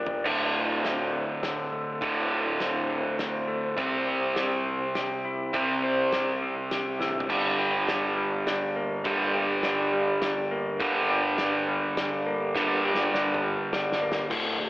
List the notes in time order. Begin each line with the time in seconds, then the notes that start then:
Already playing: G1 D3 G3 A#3 D4 G4
0.06 floor tom
0.24 D1 D2 A2 D3, kick, crash
0.54 F4
0.83 C4, snare, closed hi-hat
1.13 D3
1.42 C4, snare, closed hi-hat
1.72 A3
2.01 D1 D2 A2 D3, kick, closed hi-hat
2.31 F4
2.60 C4, snare, closed hi-hat
2.89 D3
3.19 C4, snare, closed hi-hat
3.48 A3
3.77 C2 C3 G3 C4, kick, closed hi-hat
4.07 C5
4.36 G4, snare, closed hi-hat
4.66 C4
4.95 G4, snare, closed hi-hat
5.25 E4
5.53 C2 C3 G3 C4, kick, closed hi-hat
5.83 C5
6.13 G4, snare, closed hi-hat
6.42 C4
6.71 G4, snare, closed hi-hat
6.99 A1 E4, snare
7.14 G1
7.20 floor tom
7.29 G1 G2 D3 G3, kick, closed hi-hat, crash
7.59 G4
7.88 D4, snare, closed hi-hat
8.17 G3
8.47 D4, snare, closed hi-hat
8.76 A#3
9.04 G1 G2 D3 G3, kick, closed hi-hat
9.34 G4
9.63 D4, snare, closed hi-hat
9.93 G3
10.21 D4, snare, closed hi-hat
10.51 A#3
10.80 G1 G2 D3 G3, kick, closed hi-hat
11.10 G4
11.38 D4, snare, closed hi-hat
11.68 G3
11.97 D4, snare, closed hi-hat
12.26 A#3
12.55 G1 G2 D3 G3, kick, snare
12.85 G4
12.95 snare
13.14 D4, snare
13.34 mid tom
13.43 G3
13.73 D4, snare
13.92 snare
14.02 A#3
14.12 snare
14.30 D1 D2 A2 D3, kick, snare, crash
14.59 D2 A2